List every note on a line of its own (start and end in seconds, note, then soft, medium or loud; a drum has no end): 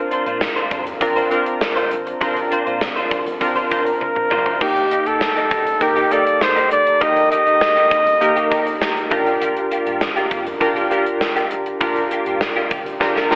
0.00 0.47 C4 medium
0.00 0.47 D4 medium
0.00 0.47 F4 medium
0.00 0.47 A#4 medium
0.11 0.25 D4 medium
0.11 0.25 F4 medium
0.11 0.25 C5 medium
0.11 closed hi-hat medium
0.26 0.49 A#2 medium
0.26 0.40 D4 medium
0.26 0.40 F4 medium
0.26 0.40 C5 medium
0.26 closed hi-hat soft
0.41 muted clean electric guitar stroke soft
0.41 snare loud
0.56 0.70 D4 medium
0.56 0.71 F4 medium
0.56 0.72 C5 medium
0.56 closed hi-hat soft
0.71 0.94 F2 medium
0.71 0.85 D4 medium
0.71 0.85 F4 medium
0.71 0.85 C5 medium
0.71 kick medium
0.71 closed hi-hat medium
0.86 muted clean electric guitar stroke soft
0.86 closed hi-hat medium
1.01 1.24 A#1 medium
1.01 1.22 C4 medium
1.01 1.22 D4 medium
1.01 1.22 F4 medium
1.01 1.23 A#4 medium
1.01 muted clean electric guitar stroke soft
1.01 kick medium
1.01 closed hi-hat medium
1.16 1.30 D4 medium
1.16 1.31 F4 medium
1.16 1.31 C5 medium
1.16 closed hi-hat soft
1.30 1.94 C4 medium
1.30 1.94 D4 medium
1.30 1.45 D4 medium
1.30 1.94 F4 medium
1.30 1.45 F4 medium
1.30 1.94 A#4 medium
1.30 1.45 C5 medium
1.30 closed hi-hat medium
1.46 muted clean electric guitar stroke soft
1.46 closed hi-hat medium
1.61 muted clean electric guitar stroke soft
1.61 snare medium
1.76 1.90 D4 medium
1.76 1.91 F4 medium
1.76 1.91 C5 medium
1.76 closed hi-hat soft
1.91 2.14 A1 medium
1.91 muted clean electric guitar stroke soft
1.91 closed hi-hat medium
2.06 muted clean electric guitar stroke soft
2.06 closed hi-hat soft
2.21 2.44 A#1 medium
2.21 3.05 C4 medium
2.21 2.39 D4 medium
2.21 3.05 D4 medium
2.21 2.39 F4 medium
2.21 3.05 F4 medium
2.21 3.05 A#4 medium
2.21 2.39 C5 medium
2.21 kick loud
2.21 closed hi-hat medium
2.37 closed hi-hat soft
2.51 2.65 D4 medium
2.51 2.65 F4 medium
2.51 2.64 C5 medium
2.51 closed hi-hat medium
2.66 2.89 A#2 medium
2.66 2.80 D4 soft
2.66 2.80 F4 medium
2.66 2.80 C5 medium
2.66 closed hi-hat soft
2.81 muted clean electric guitar stroke soft
2.81 snare loud
2.96 3.10 D4 medium
2.96 3.11 F4 medium
2.96 3.11 C5 medium
2.96 closed hi-hat soft
3.11 3.34 A#1 loud
3.11 3.25 D4 medium
3.11 3.25 F4 medium
3.11 3.25 C5 medium
3.11 kick medium
3.11 closed hi-hat medium
3.26 muted clean electric guitar stroke soft
3.26 closed hi-hat medium
3.41 3.64 C2 medium
3.41 3.62 C4 medium
3.41 3.62 D4 medium
3.41 3.62 F4 medium
3.41 3.62 A#4 medium
3.41 muted clean electric guitar stroke soft
3.41 kick medium
3.41 closed hi-hat medium
3.56 3.69 D4 medium
3.56 3.70 F4 medium
3.56 3.71 C5 medium
3.56 closed hi-hat soft
3.70 4.34 C4 medium
3.70 3.85 D4 medium
3.70 4.34 D4 medium
3.70 4.34 F4 medium
3.70 3.85 F4 medium
3.70 4.34 A#4 medium
3.70 4.63 A#4 medium
3.70 3.85 C5 medium
3.70 kick medium
3.70 closed hi-hat medium
3.86 muted clean electric guitar stroke soft
3.86 closed hi-hat medium
4.00 muted clean electric guitar stroke soft
4.00 high tom soft
4.15 muted clean electric guitar stroke soft
4.15 mid tom medium
4.30 4.54 F1 medium
4.30 4.46 D4 medium
4.30 4.45 F4 medium
4.30 4.44 C5 medium
4.30 mid tom medium
4.45 4.60 D4 soft
4.45 4.60 F4 soft
4.45 4.60 C5 medium
4.45 floor tom medium
4.60 4.84 D#1 medium
4.60 4.78 A#3 medium
4.60 5.45 A#3 medium
4.60 5.45 D#4 medium
4.60 4.79 D#4 medium
4.60 5.45 G4 medium
4.60 5.08 G4 medium
4.60 4.79 G4 medium
4.60 kick loud
4.60 splash medium
4.76 closed hi-hat soft
4.90 5.05 A#3 soft
4.90 5.05 D#4 medium
4.90 5.04 G4 medium
4.90 closed hi-hat medium
5.05 5.29 D#2 medium
5.05 5.19 A#3 soft
5.05 5.20 D#4 medium
5.05 5.20 G4 medium
5.05 5.84 A4 medium
5.05 closed hi-hat soft
5.21 muted clean electric guitar stroke soft
5.21 snare loud
5.36 5.49 A#3 medium
5.36 5.50 D#4 medium
5.36 5.51 G4 medium
5.36 closed hi-hat soft
5.51 5.74 F1 medium
5.51 5.65 A#3 medium
5.51 5.65 D#4 medium
5.51 5.65 G4 medium
5.51 kick medium
5.51 closed hi-hat medium
5.66 muted clean electric guitar stroke soft
5.66 closed hi-hat medium
5.81 6.04 G1 medium
5.81 6.02 A#3 medium
5.81 6.02 D#4 medium
5.81 6.02 G4 medium
5.81 6.14 G4 medium
5.81 6.03 A#4 medium
5.81 muted clean electric guitar stroke soft
5.81 kick medium
5.81 closed hi-hat medium
5.96 6.10 A#3 medium
5.96 6.11 D#4 medium
5.96 6.11 G4 medium
5.96 closed hi-hat soft
6.11 6.25 A#3 medium
6.11 6.74 A#3 medium
6.11 6.74 D#4 medium
6.11 6.25 D#4 medium
6.11 6.74 G4 medium
6.11 6.25 G4 medium
6.11 6.74 A4 medium
6.11 6.43 D5 medium
6.11 closed hi-hat medium
6.26 muted clean electric guitar stroke soft
6.26 closed hi-hat medium
6.41 6.71 C5 medium
6.41 muted clean electric guitar stroke soft
6.41 snare medium
6.56 6.70 A#3 medium
6.56 6.70 D#4 medium
6.56 6.71 G4 medium
6.56 closed hi-hat medium
6.71 6.94 F1 medium
6.71 7.04 D5 loud
6.71 muted clean electric guitar stroke soft
6.71 closed hi-hat medium
6.86 muted clean electric guitar stroke soft
6.86 closed hi-hat soft
7.01 7.24 D#1 medium
7.01 7.19 A#3 medium
7.01 7.85 A#3 medium
7.01 7.85 D#4 medium
7.01 7.19 D#4 medium
7.01 7.85 G4 medium
7.01 7.19 G4 medium
7.01 7.85 A#4 medium
7.01 7.31 D#5 loud
7.01 kick loud
7.01 closed hi-hat medium
7.16 closed hi-hat soft
7.31 7.45 A#3 medium
7.31 7.45 D#4 medium
7.31 7.44 G4 medium
7.31 9.07 D#5 loud
7.31 closed hi-hat medium
7.46 7.69 D#2 loud
7.46 7.60 A#3 soft
7.46 7.60 D#4 medium
7.46 7.60 G4 medium
7.46 closed hi-hat soft
7.61 muted clean electric guitar stroke soft
7.61 snare medium
7.76 7.90 A#3 medium
7.76 7.91 D#4 medium
7.76 7.91 G4 medium
7.76 closed hi-hat soft
7.91 8.14 F1 loud
7.91 8.05 A#3 medium
7.91 8.05 D#4 medium
7.91 8.05 G4 medium
7.91 kick medium
7.91 closed hi-hat medium
8.06 muted clean electric guitar stroke soft
8.06 closed hi-hat medium
8.21 8.44 G1 loud
8.21 8.42 A#3 medium
8.21 8.42 D#4 medium
8.21 8.42 G4 medium
8.21 8.42 A#4 medium
8.21 muted clean electric guitar stroke soft
8.21 closed hi-hat medium
8.36 8.50 A#3 medium
8.36 8.51 D#4 medium
8.36 8.52 G4 medium
8.36 closed hi-hat medium
8.51 9.11 A#3 medium
8.51 8.65 A#3 medium
8.51 9.11 D#4 medium
8.51 8.65 D#4 medium
8.51 9.10 G4 medium
8.51 8.65 G4 medium
8.51 9.11 A#4 medium
8.51 kick medium
8.51 closed hi-hat medium
8.66 muted clean electric guitar stroke soft
8.66 closed hi-hat medium
8.81 muted clean electric guitar stroke soft
8.81 snare loud
8.96 muted clean electric guitar stroke soft
8.96 closed hi-hat medium
9.10 9.56 G1 medium
9.10 9.26 A#3 medium
9.10 10.07 D4 medium
9.10 10.07 F4 medium
9.10 9.25 F4 medium
9.10 10.07 G4 medium
9.10 9.25 G4 medium
9.10 10.08 A#4 medium
9.10 kick loud
9.10 closed hi-hat medium
9.26 9.40 A#3 soft
9.26 9.40 F4 medium
9.26 9.40 G4 medium
9.26 closed hi-hat soft
9.41 9.59 A#3 medium
9.41 9.59 F4 medium
9.41 9.59 G4 medium
9.41 closed hi-hat medium
9.57 closed hi-hat soft
9.71 9.85 A#3 medium
9.71 9.85 F4 medium
9.71 9.85 G4 medium
9.71 closed hi-hat medium
9.86 10.09 G2 medium
9.86 10.00 A#3 medium
9.86 10.00 F4 medium
9.86 10.00 G4 medium
9.86 closed hi-hat soft
10.01 snare loud
10.16 10.30 A#3 medium
10.16 10.31 F4 medium
10.16 10.31 G4 medium
10.16 closed hi-hat soft
10.31 10.54 F2 medium
10.31 10.45 A#3 medium
10.31 10.45 F4 medium
10.31 10.45 G4 medium
10.31 kick medium
10.31 closed hi-hat medium
10.46 muted clean electric guitar stroke soft
10.46 closed hi-hat medium
10.60 10.84 G1 loud
10.60 10.82 D4 medium
10.60 10.82 F4 medium
10.60 10.82 G4 medium
10.60 10.82 A#4 medium
10.60 muted clean electric guitar stroke soft
10.60 kick medium
10.60 closed hi-hat medium
10.76 10.89 A#3 medium
10.76 10.90 F4 medium
10.76 10.91 G4 medium
10.76 closed hi-hat soft
10.90 11.05 A#3 medium
10.90 11.54 D4 medium
10.90 11.54 F4 medium
10.90 11.05 F4 medium
10.90 11.54 G4 medium
10.90 11.05 G4 medium
10.90 11.54 A#4 medium
10.90 closed hi-hat medium
11.06 muted clean electric guitar stroke soft
11.06 closed hi-hat medium
11.21 muted clean electric guitar stroke soft
11.21 snare medium
11.36 11.50 A#3 medium
11.36 11.50 F4 medium
11.36 11.51 G4 medium
11.36 closed hi-hat medium
11.51 11.74 F1 medium
11.51 muted clean electric guitar stroke soft
11.51 closed hi-hat medium
11.66 muted clean electric guitar stroke soft
11.66 closed hi-hat medium
11.80 12.04 G1 medium
11.80 11.99 A#3 medium
11.80 12.64 D4 medium
11.80 12.65 F4 medium
11.80 11.99 F4 medium
11.80 12.65 G4 medium
11.80 12.00 G4 medium
11.80 12.65 A#4 medium
11.80 kick loud
11.80 closed hi-hat medium
11.96 closed hi-hat soft
12.11 12.25 A#3 medium
12.11 12.25 F4 medium
12.11 12.25 G4 medium
12.11 closed hi-hat medium
12.26 12.49 G2 medium
12.26 12.40 A#3 medium
12.26 12.40 F4 medium
12.26 12.40 G4 medium
12.26 closed hi-hat soft
12.41 muted clean electric guitar stroke soft
12.41 snare loud
12.56 12.69 A#3 medium
12.56 12.70 F4 medium
12.56 12.71 G4 medium
12.56 closed hi-hat soft
12.71 12.94 G1 loud
12.71 12.85 A#3 medium
12.71 12.85 F4 medium
12.71 12.84 G4 medium
12.71 kick medium
12.71 closed hi-hat medium
12.86 muted clean electric guitar stroke soft
12.86 closed hi-hat medium
13.00 13.24 A#1 loud
13.00 13.22 D4 medium
13.00 13.22 F4 medium
13.00 13.22 G4 medium
13.00 13.22 A#4 medium
13.00 muted clean electric guitar stroke soft
13.00 kick medium
13.00 snare medium
13.15 13.29 A#3 medium
13.15 13.30 F4 medium
13.15 13.31 G4 medium
13.15 snare soft
13.31 13.35 A#3 medium
13.31 13.35 D4 medium
13.31 13.35 F4 medium
13.31 13.35 G4 medium
13.31 13.35 A#4 medium
13.31 snare medium